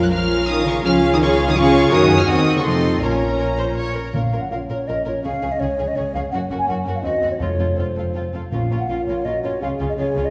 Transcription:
Already playing: A#1
0.02 F#3 F#6
0.11 F3 C#4 F4 A#4 F5 F6
0.48 D#3 D#6
0.66 C#3 C#6
0.84 C#2 F3 C#4 F4 G#4 F5 F6
1.12 D#3 D#6
1.20 C#3 C#4 F4 G#4 F5 C#6
1.47 D#3 D#6
1.56 C#3 C#4 F4 G#4 F5 C#6
1.91 F#2 D#3 A#3 C#4 F#4 A#4 C#5 D#6
2.11 G#4
2.18 F3 F6
2.27 D#2 D#3 C4 F#4 D#5 D#6
2.46 A#3 F#4
2.55 C#3 C#6
2.63 F2 C3 A3 C4 D#4 F4 A4 D#5 C6
3.00 A#1 A#2 A#3 C#4 F4 A#4 C#5 A#5
3.09 G#5
3.18 A#5
3.39 A#4
3.58 C5
3.76 C#5
3.95 A#4
4.13 A#1 A#2 A#3 C#4 F4 A#4 C#5 F5
4.32 A#1 A#2 F4 A#4 C#5
4.41 F#5
4.50 A#1 A#2 F4 A#4 C#5 F5
4.69 A#1 A#2 F4 A#4 C#5
4.87 A#1 A#2 F4 A#4 C#5 D#5
5.06 A#1 A#2 F4 A#4 C#5
5.23 C#2 C#3 G#3 C#4 G#4 C#5 F5
5.42 C#2 C#3 C#4 G#4 C#5
5.52 D#5
5.60 C#2 C#3 C#4 G#4 C#5
5.78 C#2 C#3 C#4 G#4 C#5
5.88 D#5
5.96 C#2 C#3 C#4 G#4 C#5
6.14 C#2 C#3 C#4 G#4 C#5 F5
6.32 F#1 F#2 A#3 C#4 F#4 A#4 F#5
6.50 F#1 F#2 C#4 F#4 A#4
6.59 G#5
6.68 F#1 F#2 C#4 F#4 A#4 F#5
6.85 F#1 F#2 C#4 F#4 A#4
6.95 F5
7.03 D#2 C4 F#4 C5 D#5
7.22 D#2 C4 F#4 C5
7.31 C#5
7.39 F1 F2 A3 C4 F4 A4 C#5
7.59 F1 F2 C4 F4 A4
7.76 F1 F2 C4 F4 A4 C5
7.95 F1 F2 C4 F4 A4
8.14 F1 F2 C4 F4 A4
8.33 F1 F2 C4 F4 A4
8.51 A#1 A#2 C#4 F4 A#4 F5
8.70 A#1 A#2 C#4 F4 A#4
8.79 F#5
8.88 A#1 A#2 C#4 F4 A#4 F5
9.06 A#1 A#2 C#4 F4 A#4 C#5
9.25 A#1 A#2 C#4 F4 F#4 A#4 D#5
9.43 A#1 A#2 C#4 F4 A#4 C#5
9.61 C#2 C#3 C#4 F4 G#4 F5
9.80 C#2 C#3 C#4 F4 G#4
9.89 D#5
9.97 C#2 C#3 C#4 F4 G#4 C#5
10.15 C#2 C#3 C#4 F4 G#4
10.25 D#5

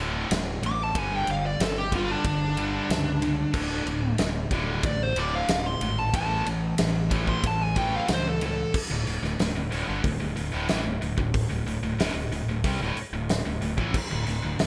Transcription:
Already playing: D1
0.00 D2 A2 D3
0.31 D1 D2 A2, snare, ride
0.62 A1 D2 A2 D6, ride
0.83 A5
0.95 G1 G2 D3 G3 G#5, kick, ride
1.15 G5
1.27 G1 G2 D3 F5, ride
1.46 D5
1.60 G1 G2 D3 A4, snare, ride
1.78 G4
1.92 G2 D3 G3 F4, kick, ride
2.11 D4
2.24 G1 G2 D3 D4, kick, ride
2.57 G2 D3 G3, ride
2.90 C#2 G2 D3, snare, ride
3.22 G2 D3, ride
3.54 D1 D2 A2 D3, kick, crash
3.86 D1 D2 A2, ride
4.18 D1 D2 A2, snare, ride
4.51 D1 D2 A2 D3, kick, ride
4.83 A1 D2 A2 D5, kick, ride
5.03 C5
5.15 D1 D2 A2 D3 D5, ride
5.35 F5
5.48 D1 D2 A2, snare, ride
5.66 C6
5.81 G#1 D2 A2, ride
5.99 A5
6.14 A1 A2 E3 A3 A5, kick, ride
6.46 A1 A2 E3, ride
6.78 A1 A2 E3, snare, ride
7.11 A2 E3 A3, kick, ride
7.27 C6, kick
7.43 A1 A2 E3 A5, kick, ride
7.62 G#5
7.76 A2 E3 A3 G5, kick, ride
7.96 F5
8.08 C#2 A2 E3, snare, ride
8.13 C5
8.29 A4
8.41 A2 E3, ride
8.46 A4
8.74 kick, crash
8.91 D1 D2 A2
9.07 D1 D2 A2, open hi-hat
9.22 D1 D2 A2, snare
9.39 D1 D2 A2, snare, open hi-hat
9.55 D1 D2 A2
9.71 D1 D2 A2, open hi-hat
9.88 G1 G2 D3
10.04 D1 D2 A2, kick, open hi-hat
10.20 D1 D2 A2
10.36 D1 D2 A2, open hi-hat
10.52 D1 D2 A2
10.69 A1 A2 E3, snare, open hi-hat
10.85 D1 D2 A2
11.01 D1 D2 A2, open hi-hat
11.17 D1 D2 A2, kick
11.34 kick, open hi-hat
11.50 D1 D2 A2
11.66 D1 D2 A2, open hi-hat
11.82 D1 D2 A2
11.98 D1 D2 A2, snare, open hi-hat
12.14 D1 D2 A2
12.31 D1 D2 A2, open hi-hat
12.46 D1 D2 A2
12.64 C2 C3 G3, kick, open hi-hat
12.81 D1 D2 A2
12.96 muted fingered electric bass stroke, muted distorted electric guitar stroke, open hi-hat
13.13 D1 D2 A2
13.29 snare, open hi-hat
13.46 D1 D2 A2
13.61 D1 D2 A2, open hi-hat
13.77 A1 A2 E3, kick
13.94 kick, crash
14.10 D1 D2 A2
14.26 D1 D2 A2, open hi-hat
14.42 D1 D2 A2
14.59 D1 D2 A2, snare, open hi-hat

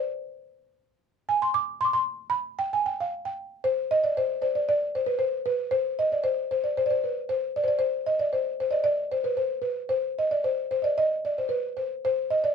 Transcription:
Already playing: C5
1.29 G#5
1.42 C6
1.54 D6
1.81 C6
1.85 D6
1.93 C6
2.30 B5
2.59 G5
2.73 G#5
2.86 G5
3.00 F5
3.25 G5
3.64 C5
3.91 D#5
4.04 D5
4.17 C5
4.42 C5 D5
4.55 D5
4.69 D5
4.95 C5
5.06 B4
5.19 C5
5.46 B4
5.71 C5
5.99 D#5
6.12 D5
6.24 C5
6.51 C5
6.64 D5
6.77 C5
6.86 D5
6.90 C5
7.04 B4
7.29 C5
7.56 D5
7.64 C5
7.68 D5
7.79 C5
8.06 D#5
8.19 D5
8.33 C5
8.60 C5
8.71 D5 D#5
8.84 D5
9.12 C5
9.24 B4 C5
9.37 C5
9.62 B4
9.89 C5
10.19 D#5
10.31 D5
10.44 C5
10.71 C5
10.82 D5 D#5
10.98 D#5
11.25 D5
11.38 C5
11.49 B4
11.77 C5
12.05 C5
12.30 D#5
12.44 D5

